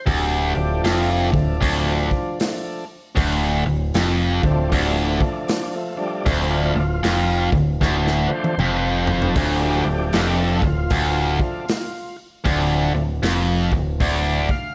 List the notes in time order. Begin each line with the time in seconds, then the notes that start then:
0.06 D1 D2 G4, kick, open hi-hat
0.54 D1 D2 F3 A3 D4
0.84 F1 F2 F4, snare, open hi-hat
1.11 F3 D4
1.32 D1 D2, kick
1.61 D1 D2, kick, open hi-hat
2.11 kick
2.40 F3 A3 D4, snare, open hi-hat
3.16 D1 D2, kick, open hi-hat
3.66 D1 D2
3.94 F1 F2, snare, open hi-hat
4.42 D1 D2 F3 A3 C4 D4, kick
4.70 D1 D2 G3, kick, open hi-hat
5.21 A3, kick
5.48 D4, snare, open hi-hat
5.76 A3
5.96 F3 G3 A3 D4
6.24 D1 D2 F3 A3 C4 D4, kick, open hi-hat
6.51 F4
6.71 D1 E4
6.76 D2 F4
7.03 F1 F2, snare, open hi-hat
7.52 D1 D2, kick
7.81 D1 D2, kick, snare
8.07 snare
8.27 F3 A3 D4 B4
8.31 C5
8.44 high tom
8.58 F1 F2, mid tom
8.77 B4
8.82 C5
9.07 floor tom
9.22 floor tom
9.34 D1 D2 F3 A3 D4, kick, open hi-hat
9.61 G4
9.85 D1 D2
10.13 F1 F2, snare, open hi-hat
10.40 A4
10.62 D1 D2, kick
10.66 F4
10.90 D1 D2, kick, open hi-hat
11.40 F3 A3 D4, kick
11.68 snare, open hi-hat
12.45 D1 D2 F3 A3 D4, kick, open hi-hat
12.93 D1 D2
13.22 F1 F2, snare, open hi-hat
13.72 D1 D2, kick
14.00 D1 D2 D5, kick, open hi-hat
14.49 F5, kick